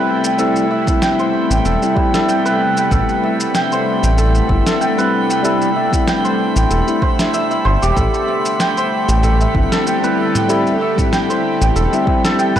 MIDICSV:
0, 0, Header, 1, 7, 480
1, 0, Start_track
1, 0, Key_signature, 0, "minor"
1, 0, Tempo, 631579
1, 296, Time_signature, 4, 2, 24, 8
1, 9574, End_track
2, 0, Start_track
2, 0, Title_t, "Santur"
2, 0, Program_c, 0, 15
2, 0, Note_on_c, 0, 69, 95
2, 0, Note_on_c, 0, 71, 86
2, 0, Note_on_c, 0, 76, 68
2, 0, Note_on_c, 0, 79, 90
2, 186, Note_off_c, 0, 79, 0
2, 189, Note_on_c, 0, 79, 65
2, 296, Note_off_c, 0, 69, 0
2, 299, Note_on_c, 0, 69, 83
2, 534, Note_off_c, 0, 76, 0
2, 537, Note_on_c, 0, 76, 72
2, 773, Note_off_c, 0, 79, 0
2, 776, Note_on_c, 0, 79, 92
2, 907, Note_on_c, 0, 72, 72
2, 953, Note_off_c, 0, 71, 0
2, 1145, Note_off_c, 0, 79, 0
2, 1148, Note_on_c, 0, 79, 70
2, 1253, Note_off_c, 0, 69, 0
2, 1256, Note_on_c, 0, 69, 73
2, 1491, Note_off_c, 0, 76, 0
2, 1494, Note_on_c, 0, 76, 69
2, 1624, Note_off_c, 0, 69, 0
2, 1627, Note_on_c, 0, 69, 99
2, 1733, Note_off_c, 0, 79, 0
2, 1736, Note_on_c, 0, 79, 88
2, 1865, Note_on_c, 0, 71, 97
2, 1910, Note_off_c, 0, 72, 0
2, 2105, Note_off_c, 0, 79, 0
2, 2108, Note_on_c, 0, 79, 72
2, 2215, Note_off_c, 0, 69, 0
2, 2218, Note_on_c, 0, 69, 84
2, 2455, Note_off_c, 0, 76, 0
2, 2458, Note_on_c, 0, 76, 73
2, 2696, Note_off_c, 0, 79, 0
2, 2699, Note_on_c, 0, 79, 100
2, 2830, Note_on_c, 0, 72, 74
2, 2875, Note_off_c, 0, 71, 0
2, 3064, Note_off_c, 0, 79, 0
2, 3067, Note_on_c, 0, 79, 71
2, 3175, Note_off_c, 0, 69, 0
2, 3178, Note_on_c, 0, 69, 69
2, 3413, Note_off_c, 0, 76, 0
2, 3416, Note_on_c, 0, 76, 74
2, 3546, Note_off_c, 0, 69, 0
2, 3549, Note_on_c, 0, 69, 100
2, 3653, Note_off_c, 0, 79, 0
2, 3656, Note_on_c, 0, 79, 97
2, 3786, Note_on_c, 0, 71, 93
2, 3832, Note_off_c, 0, 72, 0
2, 4025, Note_off_c, 0, 79, 0
2, 4028, Note_on_c, 0, 79, 68
2, 4135, Note_off_c, 0, 69, 0
2, 4138, Note_on_c, 0, 69, 87
2, 4374, Note_off_c, 0, 76, 0
2, 4377, Note_on_c, 0, 76, 68
2, 4613, Note_off_c, 0, 79, 0
2, 4616, Note_on_c, 0, 79, 104
2, 4747, Note_on_c, 0, 72, 68
2, 4792, Note_off_c, 0, 71, 0
2, 4984, Note_off_c, 0, 79, 0
2, 4987, Note_on_c, 0, 79, 72
2, 5094, Note_off_c, 0, 69, 0
2, 5097, Note_on_c, 0, 69, 71
2, 5334, Note_off_c, 0, 72, 0
2, 5337, Note_on_c, 0, 72, 96
2, 5467, Note_on_c, 0, 64, 73
2, 5573, Note_off_c, 0, 76, 0
2, 5576, Note_on_c, 0, 76, 87
2, 5701, Note_off_c, 0, 76, 0
2, 5704, Note_on_c, 0, 76, 67
2, 5811, Note_off_c, 0, 72, 0
2, 5814, Note_on_c, 0, 72, 100
2, 5944, Note_on_c, 0, 67, 89
2, 6048, Note_off_c, 0, 69, 0
2, 6051, Note_on_c, 0, 69, 86
2, 6290, Note_off_c, 0, 76, 0
2, 6293, Note_on_c, 0, 76, 75
2, 6534, Note_off_c, 0, 79, 0
2, 6537, Note_on_c, 0, 79, 103
2, 6667, Note_off_c, 0, 72, 0
2, 6670, Note_on_c, 0, 72, 73
2, 6906, Note_off_c, 0, 79, 0
2, 6910, Note_on_c, 0, 79, 72
2, 7016, Note_off_c, 0, 69, 0
2, 7019, Note_on_c, 0, 69, 75
2, 7148, Note_off_c, 0, 76, 0
2, 7151, Note_on_c, 0, 76, 67
2, 7256, Note_off_c, 0, 76, 0
2, 7259, Note_on_c, 0, 76, 69
2, 7385, Note_off_c, 0, 69, 0
2, 7388, Note_on_c, 0, 69, 102
2, 7494, Note_off_c, 0, 79, 0
2, 7497, Note_on_c, 0, 79, 87
2, 7628, Note_on_c, 0, 71, 90
2, 7674, Note_off_c, 0, 72, 0
2, 7866, Note_off_c, 0, 79, 0
2, 7869, Note_on_c, 0, 79, 67
2, 7975, Note_off_c, 0, 69, 0
2, 7978, Note_on_c, 0, 69, 80
2, 8114, Note_off_c, 0, 64, 0
2, 8213, Note_off_c, 0, 76, 0
2, 8216, Note_on_c, 0, 76, 73
2, 8329, Note_off_c, 0, 67, 0
2, 8452, Note_off_c, 0, 79, 0
2, 8455, Note_on_c, 0, 79, 97
2, 8587, Note_on_c, 0, 72, 68
2, 8633, Note_off_c, 0, 71, 0
2, 8822, Note_off_c, 0, 79, 0
2, 8825, Note_on_c, 0, 79, 75
2, 8932, Note_off_c, 0, 69, 0
2, 8935, Note_on_c, 0, 69, 75
2, 9064, Note_off_c, 0, 76, 0
2, 9067, Note_on_c, 0, 76, 68
2, 9174, Note_off_c, 0, 76, 0
2, 9177, Note_on_c, 0, 76, 74
2, 9305, Note_off_c, 0, 69, 0
2, 9308, Note_on_c, 0, 69, 102
2, 9412, Note_off_c, 0, 79, 0
2, 9415, Note_on_c, 0, 79, 96
2, 9547, Note_on_c, 0, 71, 95
2, 9574, Note_off_c, 0, 69, 0
2, 9574, Note_off_c, 0, 71, 0
2, 9574, Note_off_c, 0, 72, 0
2, 9574, Note_off_c, 0, 76, 0
2, 9574, Note_off_c, 0, 79, 0
2, 9574, End_track
3, 0, Start_track
3, 0, Title_t, "Synth texture"
3, 0, Program_c, 1, 99
3, 0, Note_on_c, 1, 59, 82
3, 0, Note_on_c, 1, 83, 83
3, 9574, Note_off_c, 1, 59, 0
3, 9574, Note_off_c, 1, 83, 0
3, 9574, End_track
4, 0, Start_track
4, 0, Title_t, "Tine electric piano"
4, 0, Program_c, 2, 4
4, 0, Note_on_c, 2, 55, 72
4, 0, Note_on_c, 2, 60, 68
4, 0, Note_on_c, 2, 64, 77
4, 265, Note_off_c, 2, 55, 0
4, 269, Note_off_c, 2, 60, 0
4, 272, Note_off_c, 2, 64, 0
4, 289, Note_on_c, 2, 55, 92
4, 297, Note_on_c, 2, 60, 84
4, 303, Note_on_c, 2, 64, 97
4, 490, Note_off_c, 2, 55, 0
4, 494, Note_off_c, 2, 60, 0
4, 497, Note_off_c, 2, 64, 0
4, 652, Note_on_c, 2, 55, 64
4, 666, Note_on_c, 2, 60, 63
4, 683, Note_on_c, 2, 64, 80
4, 1348, Note_off_c, 2, 55, 0
4, 1355, Note_off_c, 2, 60, 0
4, 1364, Note_off_c, 2, 64, 0
4, 1380, Note_on_c, 2, 55, 71
4, 1387, Note_on_c, 2, 60, 65
4, 1395, Note_on_c, 2, 64, 77
4, 1467, Note_off_c, 2, 55, 0
4, 1471, Note_off_c, 2, 60, 0
4, 1474, Note_off_c, 2, 64, 0
4, 1483, Note_on_c, 2, 55, 82
4, 1499, Note_on_c, 2, 60, 77
4, 1514, Note_on_c, 2, 64, 99
4, 3384, Note_off_c, 2, 55, 0
4, 3391, Note_off_c, 2, 60, 0
4, 3399, Note_off_c, 2, 64, 0
4, 3410, Note_on_c, 2, 55, 66
4, 3418, Note_on_c, 2, 60, 64
4, 3426, Note_on_c, 2, 64, 77
4, 3752, Note_off_c, 2, 55, 0
4, 3756, Note_off_c, 2, 60, 0
4, 3761, Note_off_c, 2, 64, 0
4, 3781, Note_on_c, 2, 55, 70
4, 3788, Note_on_c, 2, 60, 71
4, 3796, Note_on_c, 2, 64, 76
4, 4107, Note_off_c, 2, 55, 0
4, 4111, Note_off_c, 2, 60, 0
4, 4115, Note_off_c, 2, 64, 0
4, 4128, Note_on_c, 2, 55, 95
4, 4135, Note_on_c, 2, 60, 82
4, 4143, Note_on_c, 2, 64, 101
4, 4329, Note_off_c, 2, 55, 0
4, 4333, Note_off_c, 2, 60, 0
4, 4337, Note_off_c, 2, 64, 0
4, 4492, Note_on_c, 2, 55, 69
4, 4507, Note_on_c, 2, 60, 64
4, 4523, Note_on_c, 2, 64, 75
4, 5188, Note_off_c, 2, 55, 0
4, 5196, Note_off_c, 2, 60, 0
4, 5203, Note_off_c, 2, 64, 0
4, 5218, Note_on_c, 2, 55, 68
4, 5226, Note_on_c, 2, 60, 62
4, 5233, Note_on_c, 2, 64, 74
4, 5306, Note_off_c, 2, 55, 0
4, 5310, Note_off_c, 2, 60, 0
4, 5313, Note_off_c, 2, 64, 0
4, 7249, Note_on_c, 2, 55, 70
4, 7256, Note_on_c, 2, 60, 65
4, 7266, Note_on_c, 2, 64, 74
4, 7592, Note_off_c, 2, 55, 0
4, 7596, Note_off_c, 2, 60, 0
4, 7600, Note_off_c, 2, 64, 0
4, 7618, Note_on_c, 2, 55, 73
4, 7626, Note_on_c, 2, 60, 69
4, 7635, Note_on_c, 2, 64, 83
4, 7946, Note_off_c, 2, 55, 0
4, 7950, Note_off_c, 2, 60, 0
4, 7954, Note_off_c, 2, 64, 0
4, 7964, Note_on_c, 2, 55, 89
4, 7974, Note_on_c, 2, 60, 83
4, 7980, Note_on_c, 2, 64, 102
4, 8167, Note_off_c, 2, 55, 0
4, 8172, Note_off_c, 2, 60, 0
4, 8175, Note_off_c, 2, 64, 0
4, 8330, Note_on_c, 2, 55, 66
4, 8344, Note_on_c, 2, 60, 64
4, 8361, Note_on_c, 2, 64, 76
4, 9027, Note_off_c, 2, 55, 0
4, 9034, Note_off_c, 2, 60, 0
4, 9043, Note_off_c, 2, 64, 0
4, 9059, Note_on_c, 2, 55, 69
4, 9065, Note_on_c, 2, 60, 67
4, 9073, Note_on_c, 2, 64, 81
4, 9146, Note_off_c, 2, 55, 0
4, 9149, Note_off_c, 2, 60, 0
4, 9154, Note_off_c, 2, 64, 0
4, 9159, Note_on_c, 2, 55, 85
4, 9175, Note_on_c, 2, 60, 83
4, 9189, Note_on_c, 2, 64, 95
4, 9574, Note_off_c, 2, 55, 0
4, 9574, Note_off_c, 2, 60, 0
4, 9574, Note_off_c, 2, 64, 0
4, 9574, End_track
5, 0, Start_track
5, 0, Title_t, "Synth drone"
5, 0, Program_c, 3, 95
5, 0, Note_on_c, 3, 48, 84
5, 0, Note_on_c, 3, 55, 76
5, 0, Note_on_c, 3, 57, 79
5, 0, Note_on_c, 3, 64, 94
5, 2185, Note_off_c, 3, 64, 0
5, 2214, Note_on_c, 3, 62, 96
5, 6025, Note_off_c, 3, 48, 0
5, 6025, Note_off_c, 3, 62, 0
5, 6026, Note_off_c, 3, 57, 0
5, 6054, Note_on_c, 3, 57, 79
5, 6055, Note_on_c, 3, 50, 85
5, 6057, Note_on_c, 3, 67, 87
5, 9574, Note_off_c, 3, 50, 0
5, 9574, Note_off_c, 3, 55, 0
5, 9574, Note_off_c, 3, 57, 0
5, 9574, Note_off_c, 3, 67, 0
5, 9574, End_track
6, 0, Start_track
6, 0, Title_t, "Analog synth bass"
6, 0, Program_c, 4, 38
6, 1144, Note_on_c, 4, 33, 91
6, 1215, Note_off_c, 4, 33, 0
6, 1253, Note_on_c, 4, 28, 81
6, 1337, Note_off_c, 4, 28, 0
6, 2215, Note_on_c, 4, 33, 101
6, 2298, Note_off_c, 4, 33, 0
6, 3065, Note_on_c, 4, 33, 90
6, 3351, Note_off_c, 4, 33, 0
6, 3416, Note_on_c, 4, 31, 76
6, 3499, Note_off_c, 4, 31, 0
6, 4987, Note_on_c, 4, 33, 94
6, 5056, Note_off_c, 4, 33, 0
6, 5099, Note_on_c, 4, 28, 80
6, 5180, Note_off_c, 4, 28, 0
6, 5817, Note_on_c, 4, 31, 106
6, 5899, Note_off_c, 4, 31, 0
6, 5946, Note_on_c, 4, 28, 81
6, 6016, Note_off_c, 4, 28, 0
6, 6055, Note_on_c, 4, 33, 94
6, 6138, Note_off_c, 4, 33, 0
6, 6906, Note_on_c, 4, 33, 96
6, 7191, Note_off_c, 4, 33, 0
6, 7257, Note_on_c, 4, 31, 77
6, 7339, Note_off_c, 4, 31, 0
6, 8828, Note_on_c, 4, 33, 93
6, 8897, Note_off_c, 4, 33, 0
6, 8936, Note_on_c, 4, 28, 87
6, 9019, Note_off_c, 4, 28, 0
6, 9574, End_track
7, 0, Start_track
7, 0, Title_t, "Drums"
7, 185, Note_on_c, 9, 82, 64
7, 261, Note_off_c, 9, 82, 0
7, 295, Note_on_c, 9, 82, 52
7, 371, Note_off_c, 9, 82, 0
7, 426, Note_on_c, 9, 82, 32
7, 502, Note_off_c, 9, 82, 0
7, 664, Note_on_c, 9, 36, 100
7, 666, Note_on_c, 9, 82, 65
7, 740, Note_off_c, 9, 36, 0
7, 742, Note_off_c, 9, 82, 0
7, 775, Note_on_c, 9, 38, 73
7, 777, Note_on_c, 9, 82, 51
7, 851, Note_off_c, 9, 38, 0
7, 853, Note_off_c, 9, 82, 0
7, 907, Note_on_c, 9, 82, 31
7, 983, Note_off_c, 9, 82, 0
7, 1148, Note_on_c, 9, 82, 62
7, 1224, Note_off_c, 9, 82, 0
7, 1257, Note_on_c, 9, 82, 53
7, 1333, Note_off_c, 9, 82, 0
7, 1387, Note_on_c, 9, 82, 34
7, 1463, Note_off_c, 9, 82, 0
7, 1494, Note_on_c, 9, 36, 105
7, 1570, Note_off_c, 9, 36, 0
7, 1627, Note_on_c, 9, 38, 70
7, 1629, Note_on_c, 9, 82, 61
7, 1703, Note_off_c, 9, 38, 0
7, 1705, Note_off_c, 9, 82, 0
7, 1738, Note_on_c, 9, 82, 53
7, 1814, Note_off_c, 9, 82, 0
7, 1869, Note_on_c, 9, 82, 34
7, 1945, Note_off_c, 9, 82, 0
7, 2107, Note_on_c, 9, 82, 62
7, 2183, Note_off_c, 9, 82, 0
7, 2214, Note_on_c, 9, 36, 119
7, 2215, Note_on_c, 9, 82, 55
7, 2290, Note_off_c, 9, 36, 0
7, 2291, Note_off_c, 9, 82, 0
7, 2348, Note_on_c, 9, 82, 33
7, 2424, Note_off_c, 9, 82, 0
7, 2586, Note_on_c, 9, 82, 70
7, 2662, Note_off_c, 9, 82, 0
7, 2695, Note_on_c, 9, 38, 70
7, 2697, Note_on_c, 9, 82, 50
7, 2771, Note_off_c, 9, 38, 0
7, 2773, Note_off_c, 9, 82, 0
7, 2827, Note_on_c, 9, 82, 31
7, 2903, Note_off_c, 9, 82, 0
7, 3068, Note_on_c, 9, 82, 67
7, 3144, Note_off_c, 9, 82, 0
7, 3177, Note_on_c, 9, 82, 57
7, 3253, Note_off_c, 9, 82, 0
7, 3306, Note_on_c, 9, 82, 33
7, 3382, Note_off_c, 9, 82, 0
7, 3415, Note_on_c, 9, 36, 108
7, 3491, Note_off_c, 9, 36, 0
7, 3546, Note_on_c, 9, 38, 77
7, 3548, Note_on_c, 9, 82, 67
7, 3622, Note_off_c, 9, 38, 0
7, 3624, Note_off_c, 9, 82, 0
7, 3659, Note_on_c, 9, 82, 50
7, 3735, Note_off_c, 9, 82, 0
7, 3790, Note_on_c, 9, 82, 33
7, 3866, Note_off_c, 9, 82, 0
7, 4030, Note_on_c, 9, 82, 69
7, 4106, Note_off_c, 9, 82, 0
7, 4140, Note_on_c, 9, 82, 51
7, 4216, Note_off_c, 9, 82, 0
7, 4270, Note_on_c, 9, 82, 31
7, 4346, Note_off_c, 9, 82, 0
7, 4505, Note_on_c, 9, 36, 95
7, 4510, Note_on_c, 9, 82, 67
7, 4581, Note_off_c, 9, 36, 0
7, 4586, Note_off_c, 9, 82, 0
7, 4617, Note_on_c, 9, 38, 72
7, 4619, Note_on_c, 9, 82, 51
7, 4693, Note_off_c, 9, 38, 0
7, 4695, Note_off_c, 9, 82, 0
7, 4749, Note_on_c, 9, 82, 30
7, 4825, Note_off_c, 9, 82, 0
7, 4988, Note_on_c, 9, 82, 65
7, 5064, Note_off_c, 9, 82, 0
7, 5098, Note_on_c, 9, 82, 50
7, 5174, Note_off_c, 9, 82, 0
7, 5228, Note_on_c, 9, 82, 32
7, 5304, Note_off_c, 9, 82, 0
7, 5336, Note_on_c, 9, 36, 111
7, 5412, Note_off_c, 9, 36, 0
7, 5466, Note_on_c, 9, 38, 74
7, 5468, Note_on_c, 9, 82, 67
7, 5542, Note_off_c, 9, 38, 0
7, 5544, Note_off_c, 9, 82, 0
7, 5577, Note_on_c, 9, 82, 49
7, 5653, Note_off_c, 9, 82, 0
7, 5708, Note_on_c, 9, 82, 32
7, 5784, Note_off_c, 9, 82, 0
7, 5948, Note_on_c, 9, 82, 68
7, 6024, Note_off_c, 9, 82, 0
7, 6055, Note_on_c, 9, 36, 110
7, 6057, Note_on_c, 9, 82, 54
7, 6131, Note_off_c, 9, 36, 0
7, 6133, Note_off_c, 9, 82, 0
7, 6187, Note_on_c, 9, 82, 29
7, 6263, Note_off_c, 9, 82, 0
7, 6426, Note_on_c, 9, 82, 65
7, 6502, Note_off_c, 9, 82, 0
7, 6535, Note_on_c, 9, 38, 66
7, 6537, Note_on_c, 9, 82, 49
7, 6611, Note_off_c, 9, 38, 0
7, 6613, Note_off_c, 9, 82, 0
7, 6667, Note_on_c, 9, 82, 32
7, 6743, Note_off_c, 9, 82, 0
7, 6907, Note_on_c, 9, 82, 62
7, 6983, Note_off_c, 9, 82, 0
7, 7017, Note_on_c, 9, 45, 57
7, 7019, Note_on_c, 9, 82, 49
7, 7093, Note_off_c, 9, 45, 0
7, 7095, Note_off_c, 9, 82, 0
7, 7150, Note_on_c, 9, 82, 32
7, 7226, Note_off_c, 9, 82, 0
7, 7256, Note_on_c, 9, 36, 98
7, 7332, Note_off_c, 9, 36, 0
7, 7388, Note_on_c, 9, 38, 71
7, 7390, Note_on_c, 9, 82, 61
7, 7464, Note_off_c, 9, 38, 0
7, 7466, Note_off_c, 9, 82, 0
7, 7501, Note_on_c, 9, 82, 52
7, 7577, Note_off_c, 9, 82, 0
7, 7630, Note_on_c, 9, 82, 30
7, 7706, Note_off_c, 9, 82, 0
7, 7867, Note_on_c, 9, 45, 75
7, 7869, Note_on_c, 9, 82, 65
7, 7943, Note_off_c, 9, 45, 0
7, 7945, Note_off_c, 9, 82, 0
7, 7976, Note_on_c, 9, 82, 50
7, 8052, Note_off_c, 9, 82, 0
7, 8108, Note_on_c, 9, 82, 29
7, 8184, Note_off_c, 9, 82, 0
7, 8345, Note_on_c, 9, 36, 91
7, 8347, Note_on_c, 9, 45, 61
7, 8349, Note_on_c, 9, 82, 61
7, 8421, Note_off_c, 9, 36, 0
7, 8423, Note_off_c, 9, 45, 0
7, 8425, Note_off_c, 9, 82, 0
7, 8457, Note_on_c, 9, 38, 65
7, 8458, Note_on_c, 9, 82, 48
7, 8533, Note_off_c, 9, 38, 0
7, 8534, Note_off_c, 9, 82, 0
7, 8590, Note_on_c, 9, 82, 30
7, 8666, Note_off_c, 9, 82, 0
7, 8829, Note_on_c, 9, 82, 61
7, 8905, Note_off_c, 9, 82, 0
7, 8940, Note_on_c, 9, 82, 53
7, 9016, Note_off_c, 9, 82, 0
7, 9069, Note_on_c, 9, 82, 30
7, 9145, Note_off_c, 9, 82, 0
7, 9174, Note_on_c, 9, 36, 102
7, 9250, Note_off_c, 9, 36, 0
7, 9307, Note_on_c, 9, 38, 69
7, 9309, Note_on_c, 9, 82, 58
7, 9383, Note_off_c, 9, 38, 0
7, 9385, Note_off_c, 9, 82, 0
7, 9417, Note_on_c, 9, 82, 48
7, 9493, Note_off_c, 9, 82, 0
7, 9545, Note_on_c, 9, 45, 80
7, 9547, Note_on_c, 9, 82, 32
7, 9574, Note_off_c, 9, 45, 0
7, 9574, Note_off_c, 9, 82, 0
7, 9574, End_track
0, 0, End_of_file